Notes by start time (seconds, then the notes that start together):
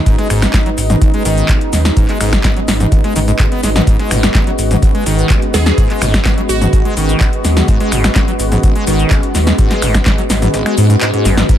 Already playing: G#3 B3 C#4 D#4 F#4 B4 D#5
0.06 G#2, kick, closed hi-hat, cabasa
0.18 G#3, snare, closed hi-hat
0.30 G#1 G#2, finger snap, closed hi-hat, open hi-hat, cabasa
0.42 G#1, finger snap, snare, closed hi-hat, cabasa
0.54 G#1, kick, snare, clap, closed hi-hat, cabasa
0.66 F#3, closed hi-hat
0.78 G#1, snare, closed hi-hat, open hi-hat, cabasa
0.90 G#2, snare, closed hi-hat, mid tom, cabasa
1.02 G#1, kick, closed hi-hat, cabasa
1.14 G#3, closed hi-hat
1.25 G#1 D#3, snare, closed hi-hat, open hi-hat, cabasa
1.37 closed hi-hat, cabasa
1.49 G#1, kick, snare, clap, closed hi-hat, cabasa
1.61 closed hi-hat
1.73 D#2, snare, closed hi-hat, open hi-hat, cabasa
1.85 snare, closed hi-hat, cabasa
1.97 G#2, kick, closed hi-hat, cabasa
2.09 G#3, clap, closed hi-hat
2.21 G#1 G#2, finger snap, open hi-hat, cabasa
2.33 G#1, finger snap, kick, snare, closed hi-hat, cabasa
2.44 G#1, kick, snare, clap, closed hi-hat, cabasa
2.57 F#3, closed hi-hat
2.68 G#1, snare, closed hi-hat, open hi-hat, cabasa
2.80 G#2, snare, closed hi-hat, mid tom, cabasa
2.92 G#1, kick, closed hi-hat, cabasa
3.04 G#3, snare, closed hi-hat
3.16 G#1 D#3, closed hi-hat, open hi-hat, cabasa
3.28 G#2, closed hi-hat, cabasa
3.39 G#2, kick, snare, clap, closed hi-hat, cabasa
3.52 B3, closed hi-hat
3.63 G#1 G#3, snare, closed hi-hat, open hi-hat, cabasa
3.76 G#2, snare, closed hi-hat, mid tom, cabasa
3.87 G#2 F#4, kick, closed hi-hat, cabasa
3.99 G#3, snare, closed hi-hat
4.11 G#1 G#2, finger snap, closed hi-hat, open hi-hat, cabasa
4.23 G#1, finger snap, snare, closed hi-hat, cabasa
4.35 G#1, kick, snare, clap, closed hi-hat, cabasa
4.47 F#3, closed hi-hat
4.59 G#1, snare, closed hi-hat, open hi-hat, cabasa
4.71 G#2, snare, closed hi-hat, mid tom, cabasa
4.82 G#1, kick, closed hi-hat, cabasa
4.95 G#3, closed hi-hat
5.06 G#1 D#3, snare, closed hi-hat, open hi-hat, cabasa
5.19 closed hi-hat, cabasa
5.30 G#1, kick, snare, clap, closed hi-hat, cabasa
5.42 closed hi-hat
5.54 D#2 G#4, snare, closed hi-hat, open hi-hat, cabasa
5.66 G#4, snare, closed hi-hat, cabasa
5.78 G#2, kick, closed hi-hat, cabasa
5.90 G#3, clap, closed hi-hat
6.02 G#1 G#2, finger snap, open hi-hat, cabasa
6.14 G#1, finger snap, kick, snare, closed hi-hat, cabasa
6.25 G#1, kick, snare, clap, closed hi-hat, cabasa
6.38 F#3, closed hi-hat
6.49 G#1 F#4, closed hi-hat, open hi-hat, cabasa
6.61 G#2, snare, closed hi-hat, mid tom, cabasa
6.73 G#1, kick, closed hi-hat, cabasa
6.85 G#3, closed hi-hat
6.97 G#1 D#3, closed hi-hat, open hi-hat, cabasa
7.09 closed hi-hat, cabasa
7.21 G#1, kick, snare, clap, closed hi-hat, cabasa
7.33 closed hi-hat
7.44 D#2, snare, closed hi-hat, open hi-hat, cabasa
7.57 snare, closed hi-hat, mid tom, cabasa
7.68 G#2, kick, closed hi-hat, cabasa
7.80 G#3, snare, closed hi-hat
7.92 G#1 G#2, finger snap, closed hi-hat, open hi-hat, cabasa
8.04 G#1, finger snap, snare, closed hi-hat, cabasa
8.15 G#1, kick, snare, clap, closed hi-hat, cabasa
8.28 F#3, closed hi-hat
8.40 G#1, snare, closed hi-hat, open hi-hat, cabasa
8.52 G#2, snare, closed hi-hat, mid tom, cabasa
8.63 G#1, kick, closed hi-hat, cabasa
8.75 G#3, closed hi-hat
8.87 G#1 D#3, snare, closed hi-hat, open hi-hat, cabasa
8.99 closed hi-hat, cabasa
9.11 G#1, kick, snare, clap, closed hi-hat, cabasa
9.23 closed hi-hat
9.35 D#2, snare, closed hi-hat, open hi-hat, cabasa
9.47 snare, closed hi-hat, cabasa
9.58 G#2, kick, closed hi-hat, cabasa
9.70 G#3, snare, clap, closed hi-hat
9.82 G#1 G#2, finger snap, open hi-hat, cabasa
9.94 G#1, finger snap, kick, snare, closed hi-hat, cabasa
10.06 G#1, kick, snare, clap, closed hi-hat, cabasa
10.18 F#3, closed hi-hat
10.30 G#1, snare, closed hi-hat, open hi-hat, cabasa
10.42 G#2, snare, closed hi-hat, mid tom, cabasa
10.54 G#1, snare, closed hi-hat, cabasa
10.66 G#3, finger snap, closed hi-hat
10.78 G#2, closed hi-hat, open hi-hat, cabasa
10.90 G#2, closed hi-hat, cabasa
11.01 G#2, snare, clap, closed hi-hat, cabasa
11.14 G#2, closed hi-hat
11.25 G#1 F#2, snare, closed hi-hat, open hi-hat, cabasa
11.37 G#2, snare, closed hi-hat, mid tom, cabasa
11.49 G#2 D#4, kick, closed hi-hat, cabasa